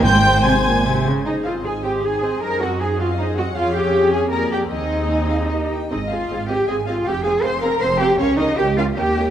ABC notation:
X:1
M:3/4
L:1/8
Q:1/4=155
K:Ab
V:1 name="Violin section"
g2 a3 z | e f a g a2 | b _g a f e g | f g2 a b g |
e4- e z | e f2 g a f | g a c' b c' g | d e g f g2 |]
V:2 name="Violin section"
g'2 a'3 z | c e c e c e | c e c e c e | d4 =d2 |
e2 a f e g | e e e e e e | f f f f f f | f f f f e e |]
V:3 name="Cello section"
A,,2 C, B,, C, D, | E F A G A2 | B _G A F E G | F G2 A B G |
E4- E z | E F2 G A F | G A c B c G | D E G F G2 |]
V:4 name="Viola section"
c4- c z | [EA] [Cc] [EA] [Cc] [EA] [Cc] | [EA] [C_G] [EA] [CG] [EA] [CG] | [DA]4 [B,A]2 |
[CA]4 [B,G] z | [CA] [CA] [CA] [CA] [CA] [CA] | [CA] [CA] [CA] [CA] [CA] [CA] | [DB] [DB] [DB] [DB] [DB] [DB] |]
V:5 name="Double bass section" clef=bass
A,,,4- A,,, z | A,,,6 | _G,,6 | F,,6 |
E,,4- E,, z | A,,,2 A,,,2 A,,,2 | F,,,2 F,,,2 F,,,2 | D,,2 D,,2 E,,2 |]